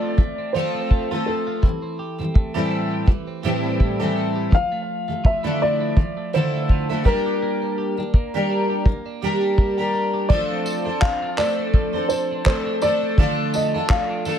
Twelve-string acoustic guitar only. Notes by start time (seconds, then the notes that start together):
Already playing: F3 A3 C4 F4 A4
0.17 F3 A3
0.54 F3 A3 C4 F4 A4
1.11 F3 A3 C4 F4 A4
1.62 A2 E3 G3
2.19 A2 E3 G3
2.54 A2 E3 G3 C4 E4 A4
3.06 A2 E3 G3
3.43 A2 E3 G3 C4 E4 A4
4.00 A2 E3 G3 C4 E4 A4
4.52 D3 F3 A3
5.08 D3 F3 A3
5.44 D3 F3 A3 D4 E4 A4
5.97 D3 F3 A3
6.33 D3 F3 A3 D4 E4 A4
6.89 D3 F3 A3 D4 E4 A4
7.04 G3 D4 G4 A#4
7.97 G3 D4
8.34 G3 D4 G4 A#4
8.86 G3
9.22 G3 D4 G4 A#4
9.78 G3 D4 G4 A#4
10.29 F3 A3 D4 A4 C5
10.85 D4 A4 C5
11.38 A3 D4 A4 C5
11.93 D4 A4 C5
12.44 A3 D4 A4 C5
12.82 A3 D4 A4 C5
13.18 D3 A3 D4 F4 A4
13.75 D4 F4 A4
14.26 A3 D4 F4 A4